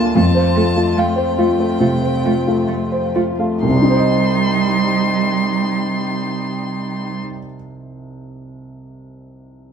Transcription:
0.00 0.11 D2 medium
0.00 0.16 A#3 medium
0.00 0.17 A#3 soft
0.00 0.15 D4 medium
0.00 0.18 F4 soft
0.00 3.63 F4 medium
0.00 0.18 A#4 soft
0.00 0.17 A5 medium
0.14 1.77 F2 medium
0.14 3.63 A3 soft
0.14 0.23 A3 medium
0.14 3.62 C4 soft
0.14 0.28 F4 medium
0.14 1.00 A5 medium
0.35 0.68 C5 soft
0.35 0.48 C5 medium
0.55 0.64 A3 soft
0.55 0.88 F4 soft
0.55 0.69 A4 medium
0.76 1.43 A3 soft
0.76 0.89 F4 medium
0.97 1.05 A3 medium
0.97 1.10 F5 medium
0.97 3.17 G5 medium
1.16 1.50 C5 soft
1.16 1.30 C5 medium
1.37 1.47 A3 soft
1.37 1.72 F4 soft
1.37 1.51 F4 medium
1.58 1.94 A3 soft
1.58 1.73 C5 medium
1.79 2.15 C3 soft
1.79 1.89 A3 soft
1.79 1.94 F4 medium
2.03 2.38 C5 soft
2.24 2.34 A3 soft
2.24 2.60 F4 soft
2.47 3.21 A3 soft
2.47 2.61 F4 medium
2.68 2.76 A3 soft
2.92 3.30 C5 soft
3.15 3.23 A3 soft
3.15 3.53 F4 soft
3.15 3.30 F4 medium
3.39 3.63 A3 soft
3.39 3.54 F5 medium
3.62 7.18 C2 soft
3.62 7.18 G3 medium
3.62 7.19 G3 soft
3.62 7.18 D#4 medium
3.62 7.18 G4 soft
3.62 7.20 C6 medium
3.69 7.25 C3 soft
3.75 7.31 G3 soft
3.82 7.38 D#4 soft
3.90 7.46 C5 medium
3.97 7.53 D#5 soft

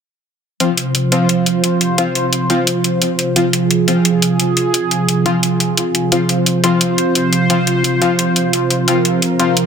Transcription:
0.60 9.66 C3 medium
0.60 9.66 F3 medium
0.60 0.69 F3 medium
0.60 0.69 C4 medium
0.60 0.69 F4 medium
0.60 9.66 F4 medium
0.60 3.35 C5 medium
0.60 closed hi-hat medium
0.77 closed hi-hat medium
0.95 closed hi-hat medium
1.12 1.96 F3 medium
1.12 1.96 C4 medium
1.12 1.96 F4 medium
1.12 closed hi-hat medium
1.29 closed hi-hat loud
1.46 closed hi-hat medium
1.64 closed hi-hat medium
1.81 closed hi-hat medium
1.98 2.07 F3 medium
1.98 2.07 C4 medium
1.98 2.07 F4 loud
1.98 closed hi-hat medium
2.15 closed hi-hat medium
2.33 closed hi-hat medium
2.50 2.59 F3 medium
2.50 2.59 C4 medium
2.50 2.59 F4 loud
2.50 closed hi-hat medium
2.67 closed hi-hat medium
2.84 closed hi-hat medium
3.02 closed hi-hat medium
3.19 closed hi-hat medium
3.36 3.45 F3 medium
3.36 3.45 C4 medium
3.36 3.45 F4 medium
3.36 6.11 G#4 medium
3.36 closed hi-hat medium
3.53 closed hi-hat medium
3.71 closed hi-hat medium
3.88 4.72 F3 medium
3.88 4.72 C4 medium
3.88 4.72 F4 medium
3.88 closed hi-hat medium
4.05 closed hi-hat medium
4.22 closed hi-hat medium
4.40 closed hi-hat medium
4.57 closed hi-hat medium
4.74 closed hi-hat medium
4.91 closed hi-hat medium
5.08 closed hi-hat medium
5.26 5.35 F3 medium
5.26 5.35 C4 medium
5.26 5.35 F4 loud
5.26 closed hi-hat medium
5.43 closed hi-hat medium
5.60 closed hi-hat medium
5.77 closed hi-hat medium
5.95 closed hi-hat medium
6.12 6.21 F3 medium
6.12 6.21 C4 medium
6.12 6.21 F4 medium
6.12 8.87 C5 medium
6.12 closed hi-hat medium
6.29 closed hi-hat medium
6.46 closed hi-hat medium
6.64 7.48 F3 medium
6.64 7.48 C4 medium
6.64 7.48 F4 medium
6.64 closed hi-hat medium
6.81 closed hi-hat medium
6.98 closed hi-hat medium
7.15 closed hi-hat medium
7.33 closed hi-hat medium
7.50 7.59 F3 medium
7.50 7.59 C4 medium
7.50 7.59 F4 loud
7.50 closed hi-hat medium
7.67 closed hi-hat medium
7.84 closed hi-hat medium
8.02 8.11 F3 medium
8.02 8.11 C4 medium
8.02 8.11 F4 loud
8.02 closed hi-hat medium
8.19 closed hi-hat medium
8.36 closed hi-hat medium
8.53 closed hi-hat medium
8.71 closed hi-hat medium
8.88 8.97 F3 medium
8.88 8.97 C4 medium
8.88 8.97 F4 medium
8.88 9.66 A#4 medium
8.88 closed hi-hat medium
9.05 closed hi-hat medium
9.22 closed hi-hat medium
9.39 9.66 F3 medium
9.39 9.66 C4 medium
9.39 9.66 F4 medium
9.39 closed hi-hat medium
9.57 closed hi-hat medium

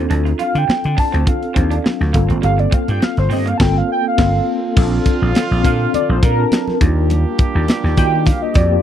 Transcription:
0.00 0.76 C4 medium
0.00 0.77 D4 medium
0.00 0.77 F4 medium
0.00 0.77 A4 medium
0.10 0.32 D2 loud
0.10 0.20 D4 medium
0.10 closed hi-hat medium
0.10 muted conga medium
0.25 muted clean electric guitar stroke soft
0.25 closed hi-hat soft
0.39 0.49 F4 medium
0.39 0.60 F5 loud
0.39 closed hi-hat medium
0.39 muted conga soft
0.55 0.65 D3 medium
0.55 1.01 G5 loud
0.55 closed hi-hat soft
0.68 muted clean electric guitar stroke soft
0.68 muted slap bass stroke soft
0.68 snare loud
0.68 high conga medium
0.84 0.95 D3 medium
0.84 closed hi-hat soft
0.97 1.07 D4 medium
0.97 1.30 A5 loud
0.97 kick medium
0.97 open hi-hat medium
1.12 1.24 D2 medium
1.12 1.21 C4 medium
1.12 closed hi-hat medium
1.26 2.14 C4 medium
1.26 2.14 D4 medium
1.26 2.14 F4 medium
1.26 2.14 A4 medium
1.26 2.15 F5 medium
1.26 muted clean electric guitar stroke soft
1.26 kick loud
1.26 closed hi-hat medium
1.26 muted conga soft
1.26 low conga medium
1.43 closed hi-hat soft
1.54 1.77 D#2 medium
1.54 1.65 C4 medium
1.54 kick loud
1.54 closed hi-hat medium
1.54 muted conga soft
1.70 1.79 D4 medium
1.70 closed hi-hat medium
1.84 muted clean electric guitar stroke soft
1.84 snare loud
1.84 high conga medium
2.01 2.11 D2 loud
2.01 snare soft
2.01 high conga medium
2.13 2.26 G1 medium
2.13 2.21 A3 medium
2.13 2.24 A#3 medium
2.13 3.10 C4 medium
2.13 3.10 F4 medium
2.13 3.10 A4 loud
2.13 kick loud
2.13 closed hi-hat medium
2.21 3.13 A#3 medium
2.29 2.40 G#1 medium
2.29 2.38 C4 medium
2.29 closed hi-hat soft
2.42 2.65 G1 loud
2.42 2.53 G3 medium
2.42 2.61 F5 loud
2.42 closed hi-hat medium
2.42 muted conga medium
2.58 2.75 D5 medium
2.58 muted clean electric guitar stroke soft
2.58 closed hi-hat soft
2.71 2.82 C4 medium
2.71 2.89 F5 loud
2.71 kick loud
2.71 closed hi-hat medium
2.71 muted conga soft
2.88 2.98 G2 loud
2.88 3.05 G5 loud
2.88 closed hi-hat medium
3.01 3.19 F5 loud
3.01 muted clean electric guitar stroke soft
3.01 snare loud
3.01 high conga medium
3.17 3.27 G1 loud
3.17 3.31 C5 medium
3.17 snare soft
3.17 closed hi-hat soft
3.30 3.52 G2 loud
3.30 3.40 C4 loud
3.30 3.50 D#5 loud
3.30 open hi-hat medium
3.30 low conga medium
3.46 3.55 A#3 medium
3.46 3.57 F5 loud
3.46 closed hi-hat medium
3.58 3.80 G1 loud
3.58 3.80 A#3 medium
3.58 3.80 C4 medium
3.58 3.80 F4 medium
3.58 3.81 A4 loud
3.58 3.79 G5 loud
3.58 3.63 A5 medium
3.58 kick loud
3.58 snare loud
3.58 crash medium
3.78 3.90 F5 loud
3.92 4.05 G5 loud
4.08 4.74 F5 loud
4.17 4.38 G1 medium
4.17 4.38 A#3 loud
4.17 4.38 C4 medium
4.17 4.38 F4 loud
4.17 4.39 A4 loud
4.17 kick loud
4.17 snare loud
4.17 crash medium
4.75 4.98 A#1 loud
4.75 6.48 D3 medium
4.75 6.48 F3 medium
4.75 5.48 C4 medium
4.75 6.48 C4 medium
4.75 5.48 D4 medium
4.75 5.48 F4 medium
4.75 6.48 F4 loud
4.75 5.49 A4 loud
4.75 kick loud
4.75 crash loud
4.75 muted conga medium
5.06 kick loud
5.06 closed hi-hat medium
5.06 muted conga soft
5.22 5.32 A#1 loud
5.35 snare loud
5.35 closed hi-hat medium
5.35 high conga medium
5.51 5.61 A#1 loud
5.51 snare soft
5.63 5.86 A#2 loud
5.63 6.23 C4 medium
5.63 6.23 D4 medium
5.63 6.23 F4 medium
5.63 6.23 A4 medium
5.63 5.92 F5 loud
5.63 kick medium
5.63 closed hi-hat medium
5.63 low conga medium
5.94 6.08 D5 loud
5.94 closed hi-hat medium
5.94 muted conga soft
5.94 low conga medium
6.09 6.19 A#1 loud
6.09 6.23 C5 medium
6.23 6.44 A#2 loud
6.23 6.77 A#4 loud
6.23 kick loud
6.23 closed hi-hat medium
6.23 muted conga medium
6.37 6.80 C4 medium
6.37 6.80 D4 medium
6.37 6.80 F4 medium
6.37 6.81 A5 medium
6.52 snare loud
6.52 closed hi-hat medium
6.52 high conga medium
6.68 snare soft
6.68 high conga medium
6.80 7.23 D#2 medium
6.80 8.82 G3 medium
6.80 8.82 A#3 medium
6.80 7.76 A#3 medium
6.80 8.82 D4 medium
6.80 7.76 D4 medium
6.80 7.76 F4 medium
6.80 8.82 G4 loud
6.80 7.76 G4 medium
6.80 kick loud
6.80 closed hi-hat medium
7.10 closed hi-hat medium
7.10 muted conga medium
7.39 kick loud
7.39 closed hi-hat medium
7.39 muted conga soft
7.55 7.65 D#2 loud
7.68 snare loud
7.68 closed hi-hat medium
7.68 high conga medium
7.84 7.94 D#2 loud
7.84 snare soft
7.97 8.30 D#3 loud
7.97 8.56 A#3 medium
7.97 8.56 D4 medium
7.97 8.56 F4 medium
7.97 8.05 F#4 medium
7.97 8.28 G5 loud
7.97 kick medium
7.97 closed hi-hat medium
7.97 low conga medium
8.05 8.60 G4 medium
8.26 8.44 F5 loud
8.26 kick loud
8.26 closed hi-hat medium
8.26 muted conga soft
8.26 low conga medium
8.42 8.58 D#5 loud
8.54 8.77 F2 medium
8.54 8.82 D5 loud
8.54 kick loud
8.54 closed hi-hat medium
8.54 muted conga medium
8.71 8.82 A#3 medium
8.71 8.82 D4 medium
8.71 8.82 F4 medium
8.71 8.82 G4 medium

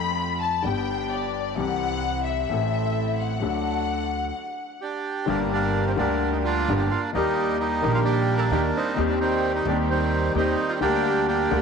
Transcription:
0.00 0.61 F2 medium
0.00 0.61 F3 medium
0.00 0.60 A3 medium
0.00 0.61 C4 medium
0.00 0.61 F4 medium
0.00 0.61 A4 medium
0.00 0.62 A4 medium
0.00 0.38 B5 loud
0.42 0.66 A5 medium
0.63 1.53 G1 medium
0.63 1.53 G2 medium
0.63 1.52 D3 medium
0.63 1.52 G3 medium
0.63 1.53 B3 medium
0.63 1.53 D4 medium
0.63 1.53 G4 medium
0.63 1.54 G4 medium
0.63 1.12 G5 medium
1.12 1.58 D5 medium
1.56 2.45 C2 medium
1.56 2.46 C2 medium
1.56 2.46 C3 medium
1.56 2.45 E3 medium
1.56 2.45 G3 medium
1.56 2.46 C4 medium
1.56 2.46 E4 medium
1.56 2.46 G4 medium
1.56 2.47 G4 medium
1.56 2.23 F#5 loud
2.26 3.19 E5 medium
2.49 3.37 A1 medium
2.49 3.38 A1 medium
2.49 3.38 A2 medium
2.49 3.37 E3 medium
2.49 3.37 A3 medium
2.49 3.38 C4 medium
2.49 3.38 E4 medium
2.49 3.38 A4 medium
2.53 3.39 A4 medium
3.19 4.82 F#5 medium
3.39 4.30 D2 medium
3.39 4.30 D3 medium
3.39 4.29 F#3 medium
3.39 4.30 A3 medium
3.39 4.30 D4 medium
3.39 4.30 F#4 medium
3.39 4.30 A4 medium
3.43 4.31 A4 medium
4.81 5.26 D4 medium
4.81 5.30 G4 medium
5.26 5.94 G1 loud
5.26 5.95 G1 loud
5.26 5.95 G2 medium
5.26 5.94 D3 medium
5.26 5.94 G3 medium
5.26 5.53 G3 medium
5.26 5.95 A#3 medium
5.26 5.53 A#3 medium
5.26 5.95 D4 medium
5.26 5.39 D4 medium
5.26 5.95 G4 medium
5.26 5.95 A#4 medium
5.53 5.97 G3 medium
5.53 5.97 A#3 medium
5.53 5.85 D4 loud
5.87 5.92 C4 medium
5.96 6.64 D2 loud
5.96 6.64 D2 medium
5.96 6.65 D3 medium
5.96 6.64 G3 medium
5.96 6.88 G3 medium
5.96 6.43 A#3 medium
5.96 6.65 A#3 medium
5.96 6.65 D4 medium
5.96 6.31 D4 medium
5.96 6.65 G4 medium
5.96 6.65 A#4 loud
6.01 6.66 G4 medium
6.32 6.38 D#4 medium
6.44 7.10 A#3 medium
6.44 7.11 D4 medium
6.44 6.80 F4 loud
6.68 6.88 G1 loud
6.68 6.89 G1 medium
6.68 6.88 G2 medium
6.68 6.88 D3 medium
6.68 6.88 G3 medium
6.68 6.89 A#3 medium
6.68 6.88 D4 medium
6.68 6.88 G4 medium
6.68 6.89 G4 medium
6.68 6.88 A#4 medium
6.80 6.85 G4 medium
6.91 7.01 F4 medium
7.15 7.80 D#2 loud
7.15 7.80 D#2 medium
7.15 7.80 D#3 loud
7.15 7.58 G3 medium
7.15 7.80 A#3 medium
7.15 7.59 A#3 medium
7.15 7.57 D#4 loud
7.15 7.81 G4 medium
7.15 7.80 D5 medium
7.60 8.48 G3 medium
7.60 8.04 A#3 medium
7.60 7.92 D#4 medium
7.81 8.48 A#1 medium
7.81 8.49 A#1 loud
7.81 8.48 A#2 medium
7.81 8.48 D#3 medium
7.81 8.48 A#3 medium
7.81 8.49 D4 medium
7.81 8.49 G4 medium
7.81 8.50 G4 loud
7.95 8.00 F4 loud
8.05 8.93 A#3 medium
8.05 8.93 D4 medium
8.05 8.35 G4 medium
8.38 8.44 A4 loud
8.38 8.41 A#4 medium
8.51 8.70 D#2 loud
8.51 8.71 D#2 medium
8.51 8.71 D#3 medium
8.51 8.71 A#3 medium
8.51 8.71 D4 medium
8.51 8.71 D#4 medium
8.51 8.71 G4 medium
8.51 8.62 G4 loud
8.51 8.71 G4 medium
8.77 9.19 G3 medium
8.77 9.19 C4 medium
8.77 9.08 D#4 medium
8.95 9.63 D#2 loud
8.95 8.96 D#3 medium
8.95 9.63 D#3 loud
8.95 9.62 G3 medium
8.95 9.63 C4 medium
8.95 9.63 D#4 medium
8.95 9.63 G4 medium
8.99 9.64 G4 medium
9.10 9.15 D4 medium
9.20 9.90 D#3 medium
9.20 9.89 G3 medium
9.20 9.52 C4 loud
9.55 9.67 D#4 medium
9.65 10.31 D#2 loud
9.65 10.32 D#2 medium
9.65 10.32 D#3 medium
9.65 10.32 G3 medium
9.65 10.32 C4 medium
9.65 10.33 C4 medium
9.65 9.78 D4 medium
9.65 10.33 D#4 medium
9.65 10.32 G4 medium
9.65 10.33 G4 loud
9.90 10.79 D#3 medium
9.90 10.37 G3 medium
9.90 10.33 C4 loud
10.35 10.55 D#2 loud
10.35 10.55 D#2 medium
10.35 10.55 D#3 medium
10.35 10.55 G3 medium
10.35 10.80 G3 medium
10.35 10.55 C4 medium
10.35 10.80 C4 medium
10.35 10.55 D#4 medium
10.35 10.72 D#4 loud
10.35 10.55 G4 medium
10.69 10.74 F4 medium
10.81 11.48 D2 medium
10.81 11.48 D3 medium
10.81 11.48 G3 medium
10.81 11.26 A#3 medium
10.81 11.48 A#3 medium
10.81 11.27 D4 medium
10.81 11.48 D4 medium
10.81 11.26 G4 loud
10.81 11.48 G4 medium
10.85 11.49 G4 medium
11.27 11.62 A#3 medium
11.27 11.62 D4 medium
11.27 11.60 G4 loud
11.51 11.62 D2 loud
11.51 11.62 D3 loud
11.51 11.62 G3 medium
11.51 11.62 A#3 medium
11.51 11.62 D4 medium
11.51 11.62 G4 medium

